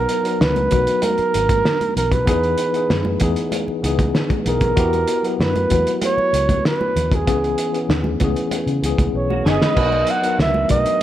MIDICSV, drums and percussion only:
0, 0, Header, 1, 2, 480
1, 0, Start_track
1, 0, Tempo, 623701
1, 1755, Time_signature, 4, 2, 24, 8
1, 8486, End_track
2, 0, Start_track
2, 0, Title_t, "Drums"
2, 68, Note_on_c, 9, 42, 60
2, 145, Note_off_c, 9, 42, 0
2, 193, Note_on_c, 9, 42, 43
2, 270, Note_off_c, 9, 42, 0
2, 316, Note_on_c, 9, 38, 110
2, 319, Note_on_c, 9, 62, 22
2, 393, Note_off_c, 9, 38, 0
2, 396, Note_off_c, 9, 62, 0
2, 431, Note_on_c, 9, 42, 27
2, 431, Note_on_c, 9, 62, 28
2, 431, Note_on_c, 9, 63, 61
2, 508, Note_off_c, 9, 42, 0
2, 508, Note_off_c, 9, 62, 0
2, 508, Note_off_c, 9, 63, 0
2, 545, Note_on_c, 9, 42, 62
2, 552, Note_on_c, 9, 63, 65
2, 552, Note_on_c, 9, 64, 61
2, 556, Note_on_c, 9, 36, 65
2, 622, Note_off_c, 9, 42, 0
2, 629, Note_off_c, 9, 63, 0
2, 629, Note_off_c, 9, 64, 0
2, 633, Note_off_c, 9, 36, 0
2, 670, Note_on_c, 9, 42, 44
2, 747, Note_off_c, 9, 42, 0
2, 785, Note_on_c, 9, 42, 74
2, 792, Note_on_c, 9, 63, 56
2, 862, Note_off_c, 9, 42, 0
2, 869, Note_off_c, 9, 63, 0
2, 906, Note_on_c, 9, 42, 29
2, 916, Note_on_c, 9, 62, 26
2, 983, Note_off_c, 9, 42, 0
2, 993, Note_off_c, 9, 62, 0
2, 1033, Note_on_c, 9, 42, 64
2, 1110, Note_off_c, 9, 42, 0
2, 1149, Note_on_c, 9, 36, 82
2, 1150, Note_on_c, 9, 42, 47
2, 1151, Note_on_c, 9, 63, 62
2, 1226, Note_off_c, 9, 36, 0
2, 1227, Note_off_c, 9, 42, 0
2, 1228, Note_off_c, 9, 63, 0
2, 1273, Note_on_c, 9, 38, 99
2, 1277, Note_on_c, 9, 62, 29
2, 1350, Note_off_c, 9, 38, 0
2, 1354, Note_off_c, 9, 62, 0
2, 1392, Note_on_c, 9, 63, 52
2, 1393, Note_on_c, 9, 42, 32
2, 1469, Note_off_c, 9, 63, 0
2, 1470, Note_off_c, 9, 42, 0
2, 1513, Note_on_c, 9, 64, 50
2, 1515, Note_on_c, 9, 42, 62
2, 1590, Note_off_c, 9, 64, 0
2, 1592, Note_off_c, 9, 42, 0
2, 1628, Note_on_c, 9, 36, 85
2, 1629, Note_on_c, 9, 42, 46
2, 1705, Note_off_c, 9, 36, 0
2, 1706, Note_off_c, 9, 42, 0
2, 1747, Note_on_c, 9, 62, 22
2, 1750, Note_on_c, 9, 36, 85
2, 1750, Note_on_c, 9, 42, 76
2, 1824, Note_off_c, 9, 62, 0
2, 1826, Note_off_c, 9, 42, 0
2, 1827, Note_off_c, 9, 36, 0
2, 1874, Note_on_c, 9, 42, 27
2, 1951, Note_off_c, 9, 42, 0
2, 1982, Note_on_c, 9, 42, 63
2, 2059, Note_off_c, 9, 42, 0
2, 2109, Note_on_c, 9, 42, 39
2, 2186, Note_off_c, 9, 42, 0
2, 2233, Note_on_c, 9, 38, 108
2, 2233, Note_on_c, 9, 62, 25
2, 2310, Note_off_c, 9, 38, 0
2, 2310, Note_off_c, 9, 62, 0
2, 2346, Note_on_c, 9, 62, 29
2, 2346, Note_on_c, 9, 63, 65
2, 2423, Note_off_c, 9, 62, 0
2, 2423, Note_off_c, 9, 63, 0
2, 2460, Note_on_c, 9, 42, 67
2, 2467, Note_on_c, 9, 63, 65
2, 2467, Note_on_c, 9, 64, 60
2, 2472, Note_on_c, 9, 36, 69
2, 2537, Note_off_c, 9, 42, 0
2, 2544, Note_off_c, 9, 63, 0
2, 2544, Note_off_c, 9, 64, 0
2, 2549, Note_off_c, 9, 36, 0
2, 2587, Note_on_c, 9, 42, 41
2, 2664, Note_off_c, 9, 42, 0
2, 2707, Note_on_c, 9, 63, 52
2, 2709, Note_on_c, 9, 42, 73
2, 2784, Note_off_c, 9, 63, 0
2, 2786, Note_off_c, 9, 42, 0
2, 2833, Note_on_c, 9, 62, 27
2, 2910, Note_off_c, 9, 62, 0
2, 2955, Note_on_c, 9, 42, 64
2, 3032, Note_off_c, 9, 42, 0
2, 3069, Note_on_c, 9, 36, 84
2, 3069, Note_on_c, 9, 63, 62
2, 3071, Note_on_c, 9, 42, 40
2, 3146, Note_off_c, 9, 36, 0
2, 3146, Note_off_c, 9, 63, 0
2, 3148, Note_off_c, 9, 42, 0
2, 3192, Note_on_c, 9, 38, 107
2, 3194, Note_on_c, 9, 62, 31
2, 3269, Note_off_c, 9, 38, 0
2, 3271, Note_off_c, 9, 62, 0
2, 3310, Note_on_c, 9, 36, 89
2, 3311, Note_on_c, 9, 42, 32
2, 3316, Note_on_c, 9, 62, 26
2, 3316, Note_on_c, 9, 63, 54
2, 3387, Note_off_c, 9, 36, 0
2, 3387, Note_off_c, 9, 42, 0
2, 3393, Note_off_c, 9, 62, 0
2, 3393, Note_off_c, 9, 63, 0
2, 3431, Note_on_c, 9, 42, 67
2, 3433, Note_on_c, 9, 64, 51
2, 3508, Note_off_c, 9, 42, 0
2, 3510, Note_off_c, 9, 64, 0
2, 3546, Note_on_c, 9, 42, 42
2, 3548, Note_on_c, 9, 36, 91
2, 3623, Note_off_c, 9, 42, 0
2, 3625, Note_off_c, 9, 36, 0
2, 3670, Note_on_c, 9, 42, 69
2, 3671, Note_on_c, 9, 62, 23
2, 3672, Note_on_c, 9, 36, 94
2, 3747, Note_off_c, 9, 42, 0
2, 3748, Note_off_c, 9, 62, 0
2, 3749, Note_off_c, 9, 36, 0
2, 3795, Note_on_c, 9, 42, 31
2, 3801, Note_on_c, 9, 62, 32
2, 3872, Note_off_c, 9, 42, 0
2, 3878, Note_off_c, 9, 62, 0
2, 3906, Note_on_c, 9, 42, 63
2, 3983, Note_off_c, 9, 42, 0
2, 4036, Note_on_c, 9, 42, 35
2, 4113, Note_off_c, 9, 42, 0
2, 4160, Note_on_c, 9, 38, 100
2, 4237, Note_off_c, 9, 38, 0
2, 4276, Note_on_c, 9, 42, 30
2, 4276, Note_on_c, 9, 62, 29
2, 4276, Note_on_c, 9, 63, 60
2, 4353, Note_off_c, 9, 42, 0
2, 4353, Note_off_c, 9, 62, 0
2, 4353, Note_off_c, 9, 63, 0
2, 4388, Note_on_c, 9, 42, 66
2, 4397, Note_on_c, 9, 63, 63
2, 4397, Note_on_c, 9, 64, 65
2, 4399, Note_on_c, 9, 36, 71
2, 4465, Note_off_c, 9, 42, 0
2, 4474, Note_off_c, 9, 63, 0
2, 4474, Note_off_c, 9, 64, 0
2, 4476, Note_off_c, 9, 36, 0
2, 4516, Note_on_c, 9, 42, 44
2, 4593, Note_off_c, 9, 42, 0
2, 4629, Note_on_c, 9, 42, 78
2, 4632, Note_on_c, 9, 63, 54
2, 4706, Note_off_c, 9, 42, 0
2, 4709, Note_off_c, 9, 63, 0
2, 4758, Note_on_c, 9, 62, 32
2, 4835, Note_off_c, 9, 62, 0
2, 4878, Note_on_c, 9, 42, 59
2, 4955, Note_off_c, 9, 42, 0
2, 4994, Note_on_c, 9, 36, 81
2, 4998, Note_on_c, 9, 42, 46
2, 4999, Note_on_c, 9, 63, 67
2, 5071, Note_off_c, 9, 36, 0
2, 5075, Note_off_c, 9, 42, 0
2, 5076, Note_off_c, 9, 63, 0
2, 5120, Note_on_c, 9, 38, 107
2, 5121, Note_on_c, 9, 62, 31
2, 5197, Note_off_c, 9, 38, 0
2, 5198, Note_off_c, 9, 62, 0
2, 5240, Note_on_c, 9, 62, 23
2, 5240, Note_on_c, 9, 63, 53
2, 5317, Note_off_c, 9, 62, 0
2, 5317, Note_off_c, 9, 63, 0
2, 5358, Note_on_c, 9, 64, 53
2, 5361, Note_on_c, 9, 42, 66
2, 5435, Note_off_c, 9, 64, 0
2, 5438, Note_off_c, 9, 42, 0
2, 5476, Note_on_c, 9, 36, 90
2, 5480, Note_on_c, 9, 42, 42
2, 5553, Note_off_c, 9, 36, 0
2, 5557, Note_off_c, 9, 42, 0
2, 5598, Note_on_c, 9, 42, 67
2, 5599, Note_on_c, 9, 36, 94
2, 5675, Note_off_c, 9, 42, 0
2, 5676, Note_off_c, 9, 36, 0
2, 5728, Note_on_c, 9, 42, 30
2, 5804, Note_off_c, 9, 42, 0
2, 5833, Note_on_c, 9, 42, 66
2, 5910, Note_off_c, 9, 42, 0
2, 5960, Note_on_c, 9, 42, 41
2, 6037, Note_off_c, 9, 42, 0
2, 6077, Note_on_c, 9, 62, 23
2, 6078, Note_on_c, 9, 38, 121
2, 6154, Note_off_c, 9, 62, 0
2, 6155, Note_off_c, 9, 38, 0
2, 6189, Note_on_c, 9, 62, 29
2, 6189, Note_on_c, 9, 63, 64
2, 6266, Note_off_c, 9, 62, 0
2, 6266, Note_off_c, 9, 63, 0
2, 6310, Note_on_c, 9, 42, 63
2, 6312, Note_on_c, 9, 63, 71
2, 6312, Note_on_c, 9, 64, 65
2, 6320, Note_on_c, 9, 36, 71
2, 6387, Note_off_c, 9, 42, 0
2, 6389, Note_off_c, 9, 63, 0
2, 6389, Note_off_c, 9, 64, 0
2, 6397, Note_off_c, 9, 36, 0
2, 6436, Note_on_c, 9, 42, 41
2, 6513, Note_off_c, 9, 42, 0
2, 6551, Note_on_c, 9, 63, 52
2, 6552, Note_on_c, 9, 42, 68
2, 6628, Note_off_c, 9, 63, 0
2, 6629, Note_off_c, 9, 42, 0
2, 6676, Note_on_c, 9, 42, 31
2, 6753, Note_off_c, 9, 42, 0
2, 6800, Note_on_c, 9, 42, 61
2, 6877, Note_off_c, 9, 42, 0
2, 6914, Note_on_c, 9, 36, 77
2, 6919, Note_on_c, 9, 42, 39
2, 6919, Note_on_c, 9, 63, 61
2, 6991, Note_off_c, 9, 36, 0
2, 6996, Note_off_c, 9, 42, 0
2, 6996, Note_off_c, 9, 63, 0
2, 7161, Note_on_c, 9, 62, 23
2, 7161, Note_on_c, 9, 63, 52
2, 7238, Note_off_c, 9, 62, 0
2, 7238, Note_off_c, 9, 63, 0
2, 7281, Note_on_c, 9, 38, 68
2, 7285, Note_on_c, 9, 64, 55
2, 7358, Note_off_c, 9, 38, 0
2, 7362, Note_off_c, 9, 64, 0
2, 7400, Note_on_c, 9, 38, 84
2, 7403, Note_on_c, 9, 63, 45
2, 7477, Note_off_c, 9, 38, 0
2, 7480, Note_off_c, 9, 63, 0
2, 7517, Note_on_c, 9, 36, 82
2, 7517, Note_on_c, 9, 49, 71
2, 7594, Note_off_c, 9, 36, 0
2, 7594, Note_off_c, 9, 49, 0
2, 7637, Note_on_c, 9, 62, 33
2, 7714, Note_off_c, 9, 62, 0
2, 7748, Note_on_c, 9, 42, 65
2, 7825, Note_off_c, 9, 42, 0
2, 7877, Note_on_c, 9, 42, 39
2, 7954, Note_off_c, 9, 42, 0
2, 8000, Note_on_c, 9, 38, 102
2, 8077, Note_off_c, 9, 38, 0
2, 8113, Note_on_c, 9, 62, 32
2, 8113, Note_on_c, 9, 63, 61
2, 8190, Note_off_c, 9, 62, 0
2, 8190, Note_off_c, 9, 63, 0
2, 8228, Note_on_c, 9, 42, 63
2, 8234, Note_on_c, 9, 63, 70
2, 8234, Note_on_c, 9, 64, 61
2, 8239, Note_on_c, 9, 36, 67
2, 8305, Note_off_c, 9, 42, 0
2, 8311, Note_off_c, 9, 63, 0
2, 8311, Note_off_c, 9, 64, 0
2, 8316, Note_off_c, 9, 36, 0
2, 8355, Note_on_c, 9, 42, 44
2, 8432, Note_off_c, 9, 42, 0
2, 8486, End_track
0, 0, End_of_file